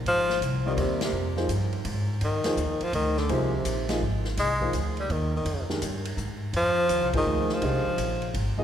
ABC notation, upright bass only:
X:1
M:3/4
L:1/8
Q:"Swing" 1/4=167
K:Fdor
V:1 name="Upright bass" clef=bass
A,,,2 C,,2 E,,2 | F,,2 G,,2 A,,2 | F,,2 E,, z D,,2 | C,,2 B,,,2 A,,,2 |
C,,2 D,,2 E,,2 | F,,2 G,,2 A,,2 | F,,2 (3E,, C,, A,,, D,,2 | C,, z B,,,2 A,,, z |]